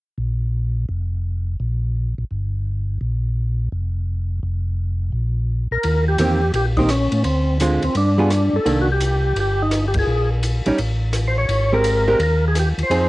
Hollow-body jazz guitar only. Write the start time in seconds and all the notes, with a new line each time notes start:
6.19 D#3 A#3 C4 G4
6.78 D#3 A#3 C4 G4
7.61 D3 G#3 C4 F4
8.18 G3 B3 F4 G#4
8.66 D#3 A#3 D4
10.66 G3 C#4 D#4
11.73 G#3 C4 G4 A#4
12.08 G#3 C4 G4 A#4
12.91 F3 C4 D#4 G#4